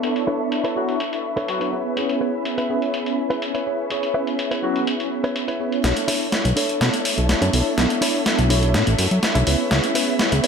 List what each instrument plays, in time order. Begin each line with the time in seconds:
Already playing: violin section D4 A4 B4 E5 C#6
0.03 tine electric piano B3 D4 E4 A4 C#5, closed hi-hat
0.16 closed hi-hat
0.27 clean electric guitar D4 E4 A4 B4 C#5, tambourine
0.41 tambourine
0.52 muted clean electric guitar stroke, closed hi-hat
0.64 clean electric guitar D4 E4 A4 B4 C#5, closed hi-hat
0.75 horn section F#3 F#4, tine electric piano B3 D4 E4 A4 C#6, tambourine
0.89 closed hi-hat
1.00 closed hi-hat
1.13 closed hi-hat
1.25 tambourine
1.36 clean electric guitar D4 E4 A4 B4 C#5, closed hi-hat
1.48 horn section F#3 F#4, closed hi-hat
1.61 clean electric guitar D4 E4 A4 B4 C#5, closed hi-hat
1.72 tine electric piano B3 C#4 E4 G#4 C#5, violin section C#4, clean electric guitar E4 B4 C#5, tambourine
1.86 tambourine
1.96 tine electric piano B3 C#4 E4 G#4 C#5, closed hi-hat
2.09 closed hi-hat
2.21 clean electric guitar E4 B4 C#5, tambourine
2.35 tambourine
2.45 muted clean electric guitar stroke, closed hi-hat
2.58 clean electric guitar E4 B4 E5, closed hi-hat
2.69 tine electric piano B3 C#4 E4 G#4 C#5, tambourine
2.82 closed hi-hat
2.94 closed hi-hat
3.06 closed hi-hat
3.18 tambourine
3.30 clean electric guitar E4 B4 E5, closed hi-hat
3.42 closed hi-hat
3.54 clean electric guitar E4 B4 C#5, closed hi-hat
3.66 tine electric piano B3 C#4 E4 G#4 C#5, tambourine
3.78 tambourine
3.90 tine electric piano B3 C#4 E4 G#4 C#5, closed hi-hat
4.03 closed hi-hat
4.14 clean electric guitar E4 B4 E5, tambourine
4.27 closed hi-hat
4.38 muted clean electric guitar stroke, closed hi-hat
4.51 clean electric guitar E4 B4 C#5, closed hi-hat
4.62 horn section F#3 F#4, tine electric piano B3 C#4 E4 G#4 C#5, tambourine
4.76 closed hi-hat
4.87 closed hi-hat
5.00 closed hi-hat
5.11 tambourine
5.24 clean electric guitar E4 B4 C#5, closed hi-hat
5.36 closed hi-hat
5.48 clean electric guitar E4 B4 C#5, closed hi-hat
5.59 tine electric piano B3 C#4 E4 G#4 C#5, tambourine
5.72 closed hi-hat, tambourine
5.83 analog synth bass B1, tine electric piano B3 D4 E4 A4 C#5, violin section D4 A4 C#5 E5, snare, closed hi-hat
5.97 closed hi-hat
6.08 clean electric guitar D4 E4 A4 C#5, open hi-hat
6.32 snare, closed hi-hat
6.45 analog synth bass B1, muted clean electric guitar stroke, closed hi-hat
6.56 tine electric piano B3 D4 E4 A4 C#5, clean electric guitar D4 E4 A4 C#5, open hi-hat
6.69 closed hi-hat
6.81 analog synth bass B2, snare, closed hi-hat
6.94 closed hi-hat
7.05 open hi-hat
7.18 analog synth bass B1, closed hi-hat
7.29 snare, closed hi-hat
7.41 analog synth bass F#2, clean electric guitar D4 E4 A4 C#5, closed hi-hat
7.53 analog synth bass B1, tine electric piano B3 D4 E4 A4 C#5, open hi-hat
7.77 analog synth bass B1, tine electric piano B3 D4 E4 A4 C#5, snare, closed hi-hat
7.90 closed hi-hat
8.01 clean electric guitar D4 E4 A4 C#5, open hi-hat
8.26 snare, closed hi-hat
8.38 analog synth bass B1, muted clean electric guitar stroke, closed hi-hat
8.49 tine electric piano B3 D4 E4 A4 C#5, clean electric guitar D4 E4 A4 C#5, open hi-hat
8.63 closed hi-hat
8.74 analog synth bass A2, snare, closed hi-hat
8.87 analog synth bass A1, closed hi-hat
8.99 analog synth bass F#2, open hi-hat
9.11 analog synth bass F#2, closed hi-hat
9.23 snare, closed hi-hat
9.35 analog synth bass B1, clean electric guitar D4 E4 A4 C#5, closed hi-hat
9.47 analog synth bass C#2, tine electric piano B3 C#4 E4 G#4 C#5, violin section C#4 B4, clean electric guitar E4 B4 C#5, open hi-hat
9.60 tambourine
9.70 analog synth bass C#2, tine electric piano B3 C#4 E4 G#4 C#5, snare, closed hi-hat
9.84 closed hi-hat
9.95 clean electric guitar E4 B4 C#5, open hi-hat
10.19 snare, closed hi-hat
10.32 analog synth bass C#2, muted clean electric guitar stroke, closed hi-hat
10.43 tine electric piano B3 C#4 E4 G#4, clean electric guitar E4 B4 C#5, open hi-hat